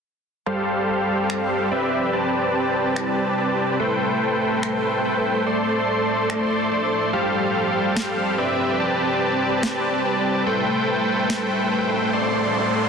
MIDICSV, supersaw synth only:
0, 0, Header, 1, 2, 480
1, 0, Start_track
1, 0, Tempo, 416667
1, 536, Time_signature, 4, 2, 24, 8
1, 14848, End_track
2, 0, Start_track
2, 0, Title_t, "Supersaw synth"
2, 0, Program_c, 0, 81
2, 534, Note_on_c, 0, 55, 96
2, 534, Note_on_c, 0, 67, 86
2, 534, Note_on_c, 0, 77, 102
2, 535, Note_on_c, 0, 69, 87
2, 535, Note_on_c, 0, 72, 87
2, 1949, Note_off_c, 0, 55, 0
2, 1949, Note_off_c, 0, 67, 0
2, 1949, Note_off_c, 0, 69, 0
2, 1949, Note_off_c, 0, 72, 0
2, 1949, Note_off_c, 0, 77, 0
2, 1975, Note_on_c, 0, 60, 92
2, 1975, Note_on_c, 0, 67, 82
2, 1975, Note_on_c, 0, 71, 85
2, 1975, Note_on_c, 0, 74, 79
2, 1975, Note_on_c, 0, 76, 97
2, 2429, Note_off_c, 0, 60, 0
2, 2429, Note_off_c, 0, 67, 0
2, 2429, Note_off_c, 0, 71, 0
2, 2429, Note_off_c, 0, 74, 0
2, 2429, Note_off_c, 0, 76, 0
2, 2454, Note_on_c, 0, 60, 91
2, 2454, Note_on_c, 0, 74, 83
2, 2454, Note_on_c, 0, 81, 102
2, 2455, Note_on_c, 0, 67, 84
2, 2455, Note_on_c, 0, 71, 86
2, 3869, Note_off_c, 0, 60, 0
2, 3869, Note_off_c, 0, 67, 0
2, 3869, Note_off_c, 0, 71, 0
2, 3869, Note_off_c, 0, 74, 0
2, 3869, Note_off_c, 0, 81, 0
2, 3894, Note_on_c, 0, 60, 79
2, 3894, Note_on_c, 0, 74, 74
2, 3895, Note_on_c, 0, 67, 72
2, 3895, Note_on_c, 0, 71, 75
2, 3895, Note_on_c, 0, 81, 90
2, 4349, Note_off_c, 0, 60, 0
2, 4349, Note_off_c, 0, 67, 0
2, 4349, Note_off_c, 0, 71, 0
2, 4349, Note_off_c, 0, 74, 0
2, 4349, Note_off_c, 0, 81, 0
2, 4374, Note_on_c, 0, 57, 99
2, 4374, Note_on_c, 0, 69, 91
2, 4374, Note_on_c, 0, 71, 86
2, 4374, Note_on_c, 0, 72, 90
2, 4374, Note_on_c, 0, 79, 107
2, 5789, Note_off_c, 0, 57, 0
2, 5789, Note_off_c, 0, 69, 0
2, 5789, Note_off_c, 0, 71, 0
2, 5789, Note_off_c, 0, 72, 0
2, 5789, Note_off_c, 0, 79, 0
2, 5815, Note_on_c, 0, 57, 92
2, 5815, Note_on_c, 0, 79, 104
2, 5816, Note_on_c, 0, 69, 86
2, 5816, Note_on_c, 0, 71, 83
2, 5816, Note_on_c, 0, 72, 81
2, 6269, Note_off_c, 0, 57, 0
2, 6269, Note_off_c, 0, 69, 0
2, 6269, Note_off_c, 0, 72, 0
2, 6269, Note_off_c, 0, 79, 0
2, 6270, Note_off_c, 0, 71, 0
2, 6295, Note_on_c, 0, 57, 92
2, 6295, Note_on_c, 0, 69, 85
2, 6295, Note_on_c, 0, 72, 83
2, 6295, Note_on_c, 0, 74, 81
2, 6295, Note_on_c, 0, 84, 99
2, 7709, Note_off_c, 0, 57, 0
2, 7709, Note_off_c, 0, 69, 0
2, 7709, Note_off_c, 0, 72, 0
2, 7709, Note_off_c, 0, 74, 0
2, 7709, Note_off_c, 0, 84, 0
2, 7735, Note_on_c, 0, 69, 74
2, 7735, Note_on_c, 0, 74, 74
2, 7736, Note_on_c, 0, 57, 78
2, 7736, Note_on_c, 0, 72, 70
2, 7736, Note_on_c, 0, 84, 86
2, 8189, Note_off_c, 0, 57, 0
2, 8189, Note_off_c, 0, 69, 0
2, 8189, Note_off_c, 0, 72, 0
2, 8189, Note_off_c, 0, 74, 0
2, 8189, Note_off_c, 0, 84, 0
2, 8215, Note_on_c, 0, 67, 88
2, 8215, Note_on_c, 0, 69, 92
2, 8216, Note_on_c, 0, 55, 98
2, 8216, Note_on_c, 0, 72, 87
2, 8216, Note_on_c, 0, 77, 110
2, 9629, Note_off_c, 0, 55, 0
2, 9629, Note_off_c, 0, 67, 0
2, 9629, Note_off_c, 0, 69, 0
2, 9629, Note_off_c, 0, 72, 0
2, 9630, Note_off_c, 0, 77, 0
2, 9655, Note_on_c, 0, 60, 90
2, 9655, Note_on_c, 0, 67, 82
2, 9655, Note_on_c, 0, 71, 84
2, 9655, Note_on_c, 0, 74, 84
2, 9655, Note_on_c, 0, 76, 97
2, 10109, Note_off_c, 0, 60, 0
2, 10109, Note_off_c, 0, 67, 0
2, 10109, Note_off_c, 0, 71, 0
2, 10109, Note_off_c, 0, 74, 0
2, 10109, Note_off_c, 0, 76, 0
2, 10134, Note_on_c, 0, 67, 84
2, 10135, Note_on_c, 0, 60, 95
2, 10135, Note_on_c, 0, 71, 85
2, 10135, Note_on_c, 0, 74, 83
2, 10135, Note_on_c, 0, 81, 102
2, 11549, Note_off_c, 0, 60, 0
2, 11549, Note_off_c, 0, 67, 0
2, 11549, Note_off_c, 0, 71, 0
2, 11549, Note_off_c, 0, 74, 0
2, 11549, Note_off_c, 0, 81, 0
2, 11576, Note_on_c, 0, 60, 80
2, 11576, Note_on_c, 0, 67, 71
2, 11576, Note_on_c, 0, 71, 73
2, 11576, Note_on_c, 0, 74, 73
2, 11576, Note_on_c, 0, 81, 90
2, 12030, Note_off_c, 0, 60, 0
2, 12030, Note_off_c, 0, 67, 0
2, 12030, Note_off_c, 0, 71, 0
2, 12030, Note_off_c, 0, 74, 0
2, 12030, Note_off_c, 0, 81, 0
2, 12055, Note_on_c, 0, 69, 91
2, 12055, Note_on_c, 0, 71, 89
2, 12055, Note_on_c, 0, 72, 90
2, 12055, Note_on_c, 0, 79, 109
2, 12056, Note_on_c, 0, 57, 99
2, 13469, Note_off_c, 0, 57, 0
2, 13469, Note_off_c, 0, 69, 0
2, 13469, Note_off_c, 0, 71, 0
2, 13469, Note_off_c, 0, 72, 0
2, 13469, Note_off_c, 0, 79, 0
2, 13495, Note_on_c, 0, 57, 90
2, 13495, Note_on_c, 0, 69, 83
2, 13495, Note_on_c, 0, 79, 106
2, 13496, Note_on_c, 0, 71, 86
2, 13496, Note_on_c, 0, 72, 84
2, 13949, Note_off_c, 0, 57, 0
2, 13949, Note_off_c, 0, 69, 0
2, 13949, Note_off_c, 0, 79, 0
2, 13950, Note_off_c, 0, 71, 0
2, 13950, Note_off_c, 0, 72, 0
2, 13976, Note_on_c, 0, 57, 91
2, 13976, Note_on_c, 0, 69, 82
2, 13976, Note_on_c, 0, 72, 86
2, 13976, Note_on_c, 0, 74, 83
2, 13976, Note_on_c, 0, 84, 100
2, 14848, Note_off_c, 0, 57, 0
2, 14848, Note_off_c, 0, 69, 0
2, 14848, Note_off_c, 0, 72, 0
2, 14848, Note_off_c, 0, 74, 0
2, 14848, Note_off_c, 0, 84, 0
2, 14848, End_track
0, 0, End_of_file